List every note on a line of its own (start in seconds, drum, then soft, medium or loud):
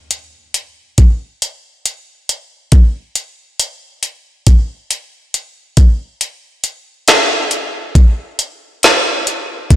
0.11 closed hi-hat medium
0.54 closed hi-hat soft
0.98 kick medium
0.98 closed hi-hat medium
1.42 closed hi-hat soft
1.86 closed hi-hat medium
2.29 closed hi-hat soft
2.72 kick medium
2.72 closed hi-hat soft
3.15 closed hi-hat medium
3.60 closed hi-hat medium
4.03 closed hi-hat soft
4.47 kick medium
4.47 closed hi-hat medium
4.91 closed hi-hat soft
5.34 closed hi-hat medium
5.77 kick medium
5.77 closed hi-hat soft
6.21 closed hi-hat soft
6.64 closed hi-hat medium
7.08 snare medium
7.08 closed hi-hat medium
7.51 closed hi-hat soft
7.95 kick medium
7.95 closed hi-hat medium
8.39 closed hi-hat medium
8.83 snare medium
8.83 closed hi-hat soft
9.27 closed hi-hat soft
9.70 kick medium
9.70 closed hi-hat medium